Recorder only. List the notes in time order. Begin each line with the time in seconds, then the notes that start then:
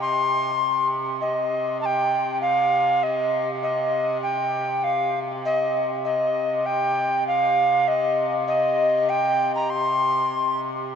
0.01 C6
1.21 D#5
1.81 A5
1.86 G5
2.41 F5
3.03 D#5
3.63 D#5
4.22 G5
4.84 F5
5.45 D#5
6.05 D#5
6.66 G5
7.27 F5
7.88 D#5
8.48 D#5
9.09 G5
9.55 A#5
9.70 C6